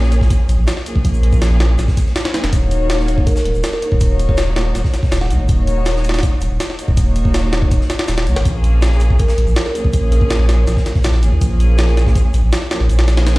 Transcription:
Already playing: A#1 F3 A#3 C#4 G#4
0.03 snare
0.12 closed hi-hat, shaker
0.21 kick, snare
0.30 kick, closed hi-hat, shaker
0.49 A#1, closed hi-hat, shaker
0.58 A#1
0.67 snare, closed hi-hat, shaker
0.77 snare
0.86 F3 A#3 C#4 G#4, closed hi-hat, shaker
0.96 A#1, kick
1.05 A#1 F3 A#3 C#4 G#4, kick, closed hi-hat, shaker
1.14 shaker
1.23 closed hi-hat
1.32 kick, shaker
1.42 snare, closed hi-hat, shaker
1.60 snare, closed hi-hat, shaker
1.78 A#1, snare, closed hi-hat, shaker
1.88 kick, snare
1.97 kick, closed hi-hat, shaker
2.06 snare
2.16 snare, closed hi-hat, shaker
2.25 snare, closed hi-hat
2.34 F3 A#3 C#4 G#4, snare, closed hi-hat, shaker
2.44 F1, snare, closed hi-hat
2.53 D#1 A#3 D#4 F#4 C#5, kick, closed hi-hat, shaker
2.71 closed hi-hat, shaker
2.90 snare, closed hi-hat, shaker
2.99 snare
3.08 closed hi-hat, shaker
3.18 kick
3.27 A#4, kick, closed hi-hat, shaker
3.36 A#4, snare, shaker
3.45 D#1, closed hi-hat
3.54 D#1, shaker
3.63 snare, closed hi-hat, shaker
3.73 A#4, snare
3.82 A#3 D#4 F#4 A#4 C#5, closed hi-hat, shaker
3.92 D#1, kick
4.00 D#1 A#3 D#4 F#4 C#5, kick, closed hi-hat, shaker
4.19 closed hi-hat, shaker
4.29 C#5, kick
4.37 snare, closed hi-hat, shaker
4.56 snare, closed hi-hat, shaker
4.75 D#1, snare, closed hi-hat, shaker
4.84 kick, snare
4.93 snare, closed hi-hat, shaker
5.03 kick, snare
5.12 D#1, snare, closed hi-hat, shaker
5.21 F#5, snare
5.30 C#2 A#3 D#4 F#4 C#5, closed hi-hat, shaker
5.40 G#1
5.49 D#1 A#3 D#4 F#4 C#5, kick, closed hi-hat, shaker
5.67 closed hi-hat, shaker
5.85 snare, closed hi-hat, shaker
5.96 snare
6.04 closed hi-hat, shaker
6.09 snare, closed hi-hat
6.14 snare, closed hi-hat
6.19 snare, closed hi-hat
6.23 kick, closed hi-hat, shaker
6.41 D#1, closed hi-hat, shaker
6.51 D#1
6.60 snare, closed hi-hat, shaker
6.70 snare
6.79 A#3 D#4 F#4 C#5, closed hi-hat, shaker
6.88 D#1, kick
6.97 D#1 A#3 D#4 F#4 C#5, kick, closed hi-hat, shaker
7.15 closed hi-hat, shaker
7.25 kick
7.34 snare, closed hi-hat, shaker
7.53 snare, closed hi-hat, shaker
7.62 kick
7.71 D#1, kick, closed hi-hat, shaker
7.81 snare
7.90 snare, closed hi-hat, shaker
7.99 snare, closed hi-hat
8.07 D#1, snare, closed hi-hat, shaker
8.18 snare, closed hi-hat
8.27 C#2 A#3 D#4 F#4 C#5, closed hi-hat, shaker
8.36 G#1, snare, closed hi-hat
8.45 A#1 F3 A#3 C#4 G#4, kick, closed hi-hat, shaker
8.64 closed hi-hat, shaker
8.82 snare, closed hi-hat, shaker
8.92 snare
9.00 closed hi-hat, shaker
9.10 kick
9.19 A#4, kick, closed hi-hat, shaker
9.28 A#4, snare, shaker
9.38 A#1, closed hi-hat
9.47 A#1, shaker
9.56 snare, closed hi-hat, shaker
9.66 A#4, snare
9.75 F3 A#3 C#4 G#4 A#4, closed hi-hat, shaker
9.84 A#1, kick
9.93 A#1 F3 A#3 C#4 G#4, kick, closed hi-hat, shaker
10.12 A#4, closed hi-hat, shaker
10.21 A#4, kick
10.30 snare, closed hi-hat, shaker
10.49 snare, closed hi-hat, shaker
10.67 A#1, snare, closed hi-hat, shaker
10.77 kick, snare
10.86 snare, closed hi-hat, shaker
10.95 kick, snare
11.03 A#1, snare, closed hi-hat, shaker
11.14 snare
11.23 G#1 F3 A#3 C#4 G#4, closed hi-hat, shaker
11.33 D#2
11.41 A#1 F3 A#3 C#4 G#4, kick, closed hi-hat, shaker
11.60 closed hi-hat, shaker
11.78 snare, closed hi-hat, shaker
11.88 snare
11.97 snare, closed hi-hat, shaker
12.07 kick, snare
12.15 kick, closed hi-hat, shaker
12.34 A#1, closed hi-hat, shaker
12.43 A#1
12.52 snare, closed hi-hat, shaker
12.62 snare
12.71 F3 A#3 C#4 G#4, snare, closed hi-hat, shaker
12.80 A#1, snare
12.89 A#1 F3 A#3 C#4 G#4, closed hi-hat, shaker
12.99 snare, closed hi-hat
13.08 snare, closed hi-hat, shaker
13.17 snare, closed hi-hat
13.26 snare, closed hi-hat, shaker

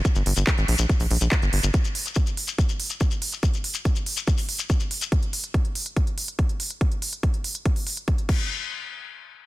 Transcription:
0.05 kick, closed hi-hat, shekere
0.15 G1, closed hi-hat, shekere
0.26 G1, open hi-hat
0.37 G1, closed hi-hat, shekere
0.47 kick, clap, closed hi-hat, shekere
0.58 G#1, closed hi-hat, shekere
0.68 A#1, open hi-hat
0.78 A#1, closed hi-hat, shekere
0.89 kick, closed hi-hat, shekere
1.00 A#1, open hi-hat, shekere
1.11 A#1, open hi-hat
1.21 A#1, closed hi-hat, shekere
1.31 kick, clap, closed hi-hat, shekere
1.42 G1, closed hi-hat, shekere
1.53 G1, open hi-hat
1.63 G1, closed hi-hat, shekere
1.73 kick, closed hi-hat, shekere
1.85 closed hi-hat, shekere
1.95 open hi-hat
2.06 closed hi-hat, shekere
2.15 kick, closed hi-hat, shekere
2.26 closed hi-hat, shekere
2.37 open hi-hat
2.48 closed hi-hat, shekere
2.58 kick, closed hi-hat, shekere
2.69 closed hi-hat, shekere
2.80 open hi-hat
2.90 closed hi-hat, shekere
3.00 kick, closed hi-hat, shekere
3.11 closed hi-hat, shekere
3.22 open hi-hat
3.32 closed hi-hat, shekere
3.43 kick, closed hi-hat, shekere
3.54 closed hi-hat, shekere
3.64 open hi-hat
3.74 closed hi-hat, shekere
3.85 kick, closed hi-hat, shekere
3.96 closed hi-hat, shekere
4.06 open hi-hat
4.17 closed hi-hat, shekere
4.27 kick, closed hi-hat, shekere
4.38 open hi-hat, shekere
4.49 open hi-hat
4.59 closed hi-hat, shekere
4.69 kick, closed hi-hat, shekere
4.80 closed hi-hat, shekere
4.91 open hi-hat
5.01 closed hi-hat, shekere
5.12 kick, closed hi-hat
5.23 closed hi-hat
5.33 open hi-hat
5.44 closed hi-hat
5.54 kick, closed hi-hat
5.65 closed hi-hat
5.75 open hi-hat
5.86 closed hi-hat
5.97 kick, closed hi-hat
6.07 closed hi-hat
6.18 open hi-hat
6.28 closed hi-hat
6.39 kick, closed hi-hat
6.49 closed hi-hat
6.60 open hi-hat
6.70 closed hi-hat
6.81 kick, closed hi-hat
6.92 closed hi-hat
7.02 open hi-hat
7.13 closed hi-hat
7.23 kick, closed hi-hat
7.34 closed hi-hat
7.44 open hi-hat
7.55 closed hi-hat
7.66 kick, closed hi-hat
7.76 open hi-hat
7.87 open hi-hat
7.97 closed hi-hat
8.08 kick, closed hi-hat
8.18 closed hi-hat
8.29 kick, crash

